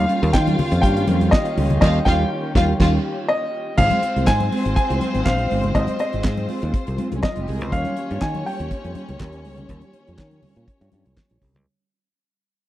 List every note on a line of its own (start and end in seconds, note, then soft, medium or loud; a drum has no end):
0.00 3.74 D#3 medium
0.00 3.74 A#3 medium
0.00 3.74 C#4 medium
0.00 1.77 F4 medium
0.00 3.74 F4 medium
0.00 3.74 G4 medium
0.00 0.30 F5 loud
0.00 1.77 F5 loud
0.08 0.21 G3 medium
0.08 0.21 C#4 medium
0.08 0.20 F4 medium
0.08 closed hi-hat medium
0.21 0.32 D#2 loud
0.21 0.32 G3 medium
0.21 0.33 C#4 medium
0.21 0.33 F4 medium
0.21 closed hi-hat soft
0.33 0.55 D#3 medium
0.33 0.79 G5 medium
0.33 muted clean electric guitar stroke soft
0.33 kick medium
0.33 snare loud
0.33 clap loud
0.33 muted conga soft
0.46 0.57 G3 medium
0.46 0.57 C#4 medium
0.46 0.58 F4 loud
0.46 closed hi-hat soft
0.46 high conga medium
0.58 muted clean electric guitar stroke soft
0.58 open hi-hat medium
0.58 muted conga soft
0.58 low conga loud
0.72 0.81 F2 loud
0.72 closed hi-hat medium
0.82 1.04 G2 loud
0.82 1.33 G5 medium
0.82 kick loud
0.82 closed hi-hat medium
0.96 1.06 G3 medium
0.96 1.07 C#4 medium
0.96 1.08 F4 medium
0.96 closed hi-hat soft
1.07 1.28 F2 medium
1.07 1.27 G3 medium
1.07 1.20 C#4 medium
1.07 1.20 F4 loud
1.07 closed hi-hat medium
1.07 muted conga soft
1.07 high conga medium
1.21 muted clean electric guitar stroke medium
1.21 closed hi-hat soft
1.21 high conga medium
1.31 1.80 D#5 medium
1.31 kick loud
1.31 snare loud
1.31 clap medium
1.31 muted conga soft
1.45 muted clean electric guitar stroke soft
1.45 closed hi-hat medium
1.56 1.78 C#2 medium
1.56 1.70 G3 medium
1.56 1.69 C#4 loud
1.56 1.68 F4 medium
1.56 open hi-hat medium
1.69 1.80 G3 medium
1.69 1.80 C#4 medium
1.69 1.81 F4 medium
1.69 closed hi-hat soft
1.69 low conga medium
1.81 1.98 D#2 loud
1.81 1.98 G3 medium
1.81 1.98 C#4 loud
1.81 1.98 F4 loud
1.81 1.99 G4 loud
1.81 2.06 D#5 medium
1.81 1.98 F5 loud
1.81 kick loud
1.81 snare loud
1.81 crash medium
2.05 2.23 D#2 loud
2.05 2.23 G3 loud
2.05 2.23 C#4 loud
2.05 2.22 F4 loud
2.05 2.23 F4 loud
2.05 2.23 F5 loud
2.05 2.51 G5 medium
2.05 kick loud
2.05 snare loud
2.54 2.72 D#2 loud
2.54 2.72 G3 medium
2.54 2.72 C#4 loud
2.54 2.72 F4 loud
2.54 2.72 G4 loud
2.54 2.72 F5 loud
2.54 kick loud
2.54 snare loud
2.79 2.97 D#2 loud
2.79 2.97 G3 loud
2.79 2.97 C#4 loud
2.79 2.96 F4 loud
2.79 2.97 F4 loud
2.79 2.97 F5 loud
2.79 kick loud
2.79 snare loud
2.79 crash medium
3.28 3.74 D#5 medium
3.77 3.89 G#1 loud
3.77 4.00 G#3 medium
3.77 7.68 G#3 medium
3.77 7.68 C4 medium
3.77 4.01 C4 medium
3.77 7.06 C4 loud
3.77 11.62 F4 medium
3.77 4.01 F4 medium
3.77 7.07 C5 loud
3.77 4.29 F5 loud
3.77 kick loud
3.77 crash loud
3.77 low conga medium
3.91 closed hi-hat medium
3.91 high conga medium
4.03 muted clean electric guitar stroke soft
4.03 closed hi-hat medium
4.03 muted conga soft
4.15 4.26 C2 medium
4.15 4.26 G#3 medium
4.15 4.27 C4 medium
4.15 4.27 F4 medium
4.15 closed hi-hat soft
4.27 4.48 G#2 medium
4.27 4.75 G#5 loud
4.27 muted clean electric guitar stroke medium
4.27 kick medium
4.27 snare loud
4.27 clap medium
4.40 muted clean electric guitar stroke soft
4.40 closed hi-hat soft
4.40 high conga medium
4.52 4.65 G#3 medium
4.52 4.65 C4 medium
4.52 4.64 F4 medium
4.52 open hi-hat medium
4.52 muted conga soft
4.65 4.75 G#1 medium
4.65 4.75 G#3 soft
4.65 4.76 C4 medium
4.65 4.76 F4 medium
4.65 closed hi-hat medium
4.76 5.22 G#5 loud
4.76 muted clean electric guitar stroke soft
4.76 kick loud
4.76 closed hi-hat medium
4.76 muted conga soft
4.90 5.00 C2 medium
4.90 5.00 G#3 medium
4.90 5.01 C4 medium
4.90 5.01 F4 medium
4.90 closed hi-hat medium
5.01 5.19 G#3 medium
5.01 5.14 C4 medium
5.01 5.13 F4 medium
5.01 closed hi-hat medium
5.01 high conga medium
5.14 5.25 G#1 medium
5.14 muted clean electric guitar stroke medium
5.14 closed hi-hat soft
5.14 high conga medium
5.25 5.47 A#1 loud
5.25 5.76 F5 medium
5.25 kick loud
5.25 snare loud
5.25 clap loud
5.25 muted conga soft
5.25 high conga medium
5.38 muted clean electric guitar stroke medium
5.38 closed hi-hat soft
5.50 5.72 G1 loud
5.50 5.70 G#3 medium
5.50 5.63 C4 medium
5.50 5.62 F4 medium
5.50 open hi-hat medium
5.63 muted clean electric guitar stroke medium
5.63 closed hi-hat medium
5.63 low conga medium
5.75 5.86 G#1 loud
5.75 5.98 G#3 medium
5.75 5.98 C4 medium
5.75 5.98 G4 loud
5.75 5.98 D#5 loud
5.75 kick loud
5.75 closed hi-hat medium
5.75 muted conga soft
5.75 low conga medium
5.87 closed hi-hat medium
5.87 high conga medium
5.99 6.46 D#5 medium
5.99 muted clean electric guitar stroke soft
5.99 closed hi-hat medium
5.99 muted conga soft
6.12 6.23 G#1 medium
6.12 6.22 G#3 medium
6.12 6.23 C4 medium
6.12 6.23 F4 medium
6.12 closed hi-hat soft
6.23 6.45 G#2 loud
6.23 muted clean electric guitar stroke medium
6.23 kick loud
6.23 snare loud
6.23 clap medium
6.37 muted clean electric guitar stroke medium
6.37 closed hi-hat soft
6.37 high conga medium
6.48 6.62 G#3 medium
6.48 6.61 C4 medium
6.48 6.60 F4 loud
6.48 open hi-hat medium
6.48 muted conga soft
6.61 6.72 D#2 loud
6.61 6.72 G#3 medium
6.61 6.73 C4 medium
6.61 6.73 F4 medium
6.61 closed hi-hat soft
6.74 muted clean electric guitar stroke soft
6.74 kick loud
6.74 closed hi-hat medium
6.86 6.97 C2 medium
6.86 muted clean electric guitar stroke soft
6.86 closed hi-hat soft
6.98 7.11 G#3 medium
6.98 7.10 C4 medium
6.98 7.10 F4 medium
6.98 closed hi-hat medium
6.98 muted conga soft
6.98 high conga medium
7.11 7.22 C2 medium
7.11 7.21 G#3 medium
7.11 7.22 C4 medium
7.11 7.22 F4 medium
7.11 closed hi-hat medium
7.11 high conga medium
7.15 7.23 C#4 medium
7.23 7.31 D#4 medium
7.23 7.74 D#5 medium
7.23 kick loud
7.23 snare loud
7.23 clap medium
7.23 muted conga soft
7.23 high conga medium
7.32 7.40 F4 medium
7.32 7.48 F4 medium
7.32 closed hi-hat medium
7.36 7.46 F1 medium
7.36 7.48 G3 medium
7.36 7.46 G#3 medium
7.36 7.47 C4 medium
7.36 7.48 G4 medium
7.47 7.61 C2 loud
7.47 7.67 G#3 medium
7.47 7.56 G#3 medium
7.47 7.59 C4 medium
7.47 7.59 G4 medium
7.47 7.56 G#4 medium
7.47 open hi-hat medium
7.56 7.64 A#3 medium
7.56 7.64 A#4 loud
7.56 muted clean electric guitar stroke soft
7.61 7.71 C#2 medium
7.61 7.72 C4 medium
7.61 7.72 C5 loud
7.61 closed hi-hat soft
7.61 low conga medium
7.71 7.83 D#2 loud
7.71 11.62 D#3 medium
7.71 7.95 G3 medium
7.71 11.62 A#3 medium
7.71 11.37 C#4 loud
7.71 7.95 C#4 medium
7.71 11.62 C#4 medium
7.71 7.95 F4 medium
7.71 11.62 G4 medium
7.71 11.37 C#5 loud
7.71 8.23 F5 loud
7.71 kick loud
7.71 closed hi-hat medium
7.71 muted conga soft
7.71 low conga medium
7.85 closed hi-hat medium
7.85 high conga medium
7.96 muted clean electric guitar stroke medium
7.96 closed hi-hat medium
8.10 8.20 G2 loud
8.10 8.20 G3 medium
8.10 8.20 C#4 medium
8.10 8.21 F4 medium
8.10 closed hi-hat soft
8.21 8.42 D#3 loud
8.21 8.47 G#5 loud
8.21 kick loud
8.21 snare loud
8.21 clap loud
8.35 closed hi-hat soft
8.35 high conga medium
8.45 8.59 G3 medium
8.45 8.58 C#4 medium
8.45 8.58 F4 medium
8.45 11.13 G5 loud
8.45 open hi-hat medium
8.59 8.69 D#2 loud
8.59 8.69 G3 soft
8.59 8.70 C#4 medium
8.59 8.70 F4 medium
8.59 closed hi-hat soft
8.71 muted clean electric guitar stroke soft
8.71 kick loud
8.71 closed hi-hat medium
8.71 muted conga soft
8.84 8.94 F2 medium
8.84 8.94 G3 medium
8.84 8.95 C#4 medium
8.84 8.95 F4 medium
8.84 closed hi-hat soft
8.95 9.13 G3 medium
8.95 9.08 C#4 medium
8.95 9.07 F4 medium
8.95 closed hi-hat medium
8.95 muted conga soft
8.95 high conga medium
9.08 9.19 C#2 medium
9.08 muted clean electric guitar stroke soft
9.08 closed hi-hat soft
9.08 high conga medium
9.20 9.46 D#2 loud
9.20 kick loud
9.20 snare loud
9.20 clap medium
9.20 muted conga soft
9.20 high conga soft
9.32 muted clean electric guitar stroke medium
9.32 closed hi-hat soft
9.44 9.66 C#2 medium
9.44 9.64 G3 medium
9.44 9.57 C#4 medium
9.44 9.57 F4 medium
9.44 open hi-hat medium
9.58 muted clean electric guitar stroke soft
9.58 closed hi-hat soft
9.58 low conga medium
9.69 9.80 D#2 loud
9.69 9.92 G3 medium
9.69 9.92 C#4 medium
9.69 9.92 G4 medium
9.69 kick loud
9.69 closed hi-hat medium
9.69 muted conga soft
9.69 low conga medium
9.81 closed hi-hat medium
9.81 high conga medium
9.93 closed hi-hat medium
9.93 muted conga soft
10.06 10.17 F2 medium
10.06 10.16 G3 medium
10.06 10.17 C#4 medium
10.06 10.18 F4 medium
10.06 closed hi-hat soft
10.18 10.39 D#3 medium
10.18 kick loud
10.18 snare loud
10.18 clap medium
10.31 closed hi-hat soft
10.31 high conga medium
10.43 10.55 G3 medium
10.43 10.55 C#4 medium
10.43 10.54 F4 medium
10.43 open hi-hat medium
10.43 muted conga soft
10.43 low conga medium
10.55 10.66 A#2 medium
10.55 10.67 F4 medium
10.55 closed hi-hat medium
10.68 kick loud
10.68 closed hi-hat medium
10.80 10.91 G2 loud
10.80 10.90 G3 medium
10.80 10.91 C#4 medium
10.80 10.91 F4 medium
10.80 closed hi-hat soft
10.91 11.04 G2 medium
10.91 11.09 G3 medium
10.91 11.05 C#4 medium
10.91 11.04 F4 medium
10.91 closed hi-hat medium
10.91 muted conga soft
10.91 high conga medium
11.05 11.15 C2 medium
11.05 muted clean electric guitar stroke soft
11.05 closed hi-hat soft
11.05 high conga medium
11.17 kick loud
11.17 snare loud
11.17 clap medium
11.17 high conga medium
11.29 11.40 A#1 medium
11.29 11.40 G3 soft
11.29 11.40 C#4 medium
11.29 11.42 F4 medium
11.29 closed hi-hat soft
11.41 11.56 C2 medium
11.41 11.61 G3 medium
11.41 11.54 C#4 medium
11.41 11.53 G4 loud
11.41 kick medium
11.41 open hi-hat medium
11.54 11.65 C#2 medium
11.54 muted clean electric guitar stroke soft
11.54 low conga medium